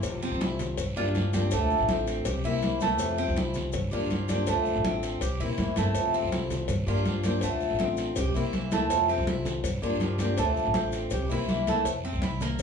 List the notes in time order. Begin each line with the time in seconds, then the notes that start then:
0.03 F2 C3 A3 C4 F4, cowbell, high conga, long guiro, maracas
0.23 C4, high conga, maracas
0.32 C2
0.41 E4, cowbell, high conga, short guiro, maracas
0.59 cowbell, high conga, low conga, short guiro, maracas
0.78 G2, muted steel-string acoustic guitar stroke, cowbell, high conga, long guiro, maracas
0.96 G2 F3 A#3 D4 F4 G4, high conga, maracas
1.14 F3 A#3 D4 G4, cowbell, high conga, short guiro, maracas
1.33 F3 A#3 C4 D4 G4, cowbell, high conga, short guiro, maracas
1.51 D2 D3 A3 C4 F4, cowbell, high conga, long guiro, maracas
1.70 high conga, maracas
1.80 A1
1.88 C4, cowbell, high conga, short guiro, maracas
2.07 cowbell, high conga, short guiro, maracas
2.25 C2 G4, muted steel-string acoustic guitar stroke, cowbell, high conga, long guiro, maracas
2.44 C2 E3 A#3 C4 E4, high conga, maracas
2.62 E3 A#3 C4 E4, cowbell, high conga, short guiro, maracas
2.81 E3 A3 A#3 C4 E4, cowbell, high conga, short guiro, maracas
2.99 F2 C3 A3 C4, cowbell, high conga, long guiro, maracas
3.03 F4
3.18 C4, high conga, maracas
3.28 C2
3.36 E4, cowbell, high conga, short guiro, maracas
3.54 cowbell, high conga, low conga, short guiro, maracas
3.72 G2, muted steel-string acoustic guitar stroke, cowbell, high conga, low conga, long guiro, maracas
3.91 G2 F3 A#3 D4 F4 G4, high conga, maracas
4.10 F3 A#3 D4 G4, cowbell, high conga, short guiro, maracas
4.28 F3 A#3 C4 D4 G4, cowbell, high conga, short guiro, maracas
4.47 D2 D3 A3 C4 F4, cowbell, high conga, long guiro, maracas
4.65 high conga, maracas
4.75 A1
4.84 C4, cowbell, high conga, short guiro, maracas
5.03 cowbell, high conga, short guiro, maracas
5.21 C2 G4, muted steel-string acoustic guitar stroke, cowbell, high conga, long guiro, maracas
5.40 A#2 E3 A#3 C4 E4, high conga, maracas
5.57 A2 E3 A#3 C4 E4, cowbell, high conga, short guiro, maracas
5.76 G2 E3 A3 A#3 C4 E4, cowbell, high conga, short guiro, maracas
5.94 F2 C3 A3 C4 F4, cowbell, high conga, long guiro, maracas
6.14 C4, high conga, maracas
6.23 C2
6.32 E4, cowbell, high conga, short guiro, maracas
6.50 cowbell, high conga, low conga, short guiro, maracas
6.68 G2, muted steel-string acoustic guitar stroke, cowbell, high conga, low conga, long guiro, maracas
6.86 G2 F3 A#3 D4 F4 G4, high conga, maracas
7.05 F3 A#3 D4 G4, cowbell, high conga, short guiro, maracas
7.23 F3 A#3 C4 D4 G4, cowbell, high conga, short guiro, maracas
7.41 D2 D3 A3 C4 F4, cowbell, high conga, long guiro, maracas
7.60 high conga, maracas
7.71 A1
7.79 C4, cowbell, high conga, short guiro, maracas
7.97 cowbell, high conga, short guiro, maracas
8.16 C2 G4, muted steel-string acoustic guitar stroke, cowbell, high conga, long guiro, maracas
8.34 C2 E3 A#3 C4 E4, high conga, maracas
8.53 E3 A#3 C4 E4, cowbell, high conga, short guiro, maracas
8.71 E3 A3 A#3 C4 E4, cowbell, high conga, short guiro, maracas
8.90 F2 C3 A3 C4 F4, cowbell, high conga, long guiro, maracas
9.09 C4, high conga, maracas
9.18 C2
9.27 E4, cowbell, high conga, short guiro, maracas
9.45 cowbell, high conga, low conga, short guiro, maracas
9.64 G2, muted steel-string acoustic guitar stroke, cowbell, high conga, long guiro, maracas
9.82 G2 F3 A#3 D4 F4 G4, high conga, maracas
10.00 F3 A#3 D4 G4, cowbell, high conga, short guiro, maracas
10.18 F3 A#3 C4 D4 G4, cowbell, high conga, short guiro, maracas
10.37 D2 D3 A3 C4 F4, cowbell, high conga, long guiro, maracas
10.56 high conga, maracas
10.65 A1
10.74 C4, cowbell, high conga, short guiro, maracas
10.92 cowbell, high conga, short guiro, maracas
11.10 C2 G4, muted steel-string acoustic guitar stroke, cowbell, high conga, long guiro, maracas
11.29 C2 E3 A#3 C4 E4, high conga, maracas
11.48 E3 A#3 C4 E4, cowbell, high conga, short guiro, maracas
11.67 E3 A3 A#3 C4 E4, cowbell, high conga, short guiro, maracas
11.85 F2, cowbell, high conga, long guiro, maracas
12.03 C4, high conga, maracas
12.13 C2
12.22 E4, cowbell, high conga, short guiro, maracas
12.41 A#3, cowbell, high conga, low conga, short guiro, maracas
12.59 G2, maracas